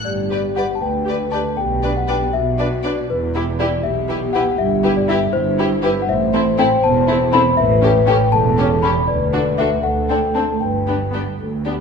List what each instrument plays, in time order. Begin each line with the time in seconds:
0.05 double bass section G1, cello section G2, french horn section G4, celesta D5
0.31 viola section G4, violin section B4 D5
0.56 viola section G4, violin section B4 D5, celesta F#5
0.75 celesta A5
0.81 double bass section D2, cello section D2, french horn section B4, celesta G5
1.06 viola section G4, violin section B4 D5
1.32 viola section G4, violin section B4 D5, celesta A5
1.57 double bass section B1, cello section B2, french horn section G4, celesta G5
1.82 viola section D4, violin section B4 D5
1.97 celesta F#5
2.07 viola section D4, violin section B4 D5, celesta G5
2.33 double bass section B1, cello section B2, french horn section F#4, celesta E5
2.58 viola section D4, violin section B4 D5
2.83 viola section D4, violin section B4 D5, celesta D5
3.09 double bass section E1, cello section E2, french horn section E4, celesta B4
3.34 viola section E4, violin section G4 B4
3.59 viola section E4, violin section G4 B4, celesta D5
3.83 double bass section B1, cello section B2, french horn section G4, celesta E5
4.09 viola section E4, violin section G4 B4
4.33 viola section E4, violin section G4 B4, celesta F#5
4.52 celesta F#5
4.58 double bass section G1, cello section G2, celesta E5
4.83 viola section E4, violin section G4 B4
4.97 celesta D5
5.08 viola section E4, violin section G4 B4, celesta E5
5.33 double bass section G1, cello section G2, french horn section E4, celesta C5
5.59 viola section E4, violin section G4 B4
5.83 viola section E4, violin section G4 B4, celesta B4
6.02 celesta F#5
6.09 double bass section A1, cello section A2, french horn section C5, celesta E5
6.34 viola section C4, violin section E4 A4
6.59 viola section C4, violin section E4 A4, celesta G5
6.83 double bass section E1, cello section E2, celesta A5
7.08 viola section C4, violin section E4 A4
7.33 viola section C4, violin section E4 A4, celesta B5
7.57 double bass section A1, cello section A2, french horn section B4, celesta E5
7.82 viola section C#4, violin section G4 A4
8.07 viola section C#4, violin section G4 A4, celesta G5
8.32 double bass section E1, cello section E2, french horn section A4, celesta A5
8.58 viola section C#4, violin section G4 A4
8.83 viola section C#4, violin section G4 A4, celesta B5
9.08 double bass section D2, cello section D2, french horn section B4, celesta D5
9.33 viola section D4, violin section F#4 A4
9.58 viola section D4, violin section F#4 A4, celesta E5
9.82 double bass section D2, cello section D2, french horn section A4, celesta F#5
10.09 viola section C4, violin section D4 A4, celesta G5
10.35 viola section C4, violin section D4 A4, celesta A5
10.61 double bass section G1, cello section G2, french horn section B4, celesta G5
10.87 viola section B3, violin section D4 G4
11.13 viola section B3, violin section D4 G4
11.39 double bass section D2, cello section D2, french horn section A4
11.65 viola section B3, violin section D4 G4, french horn section G4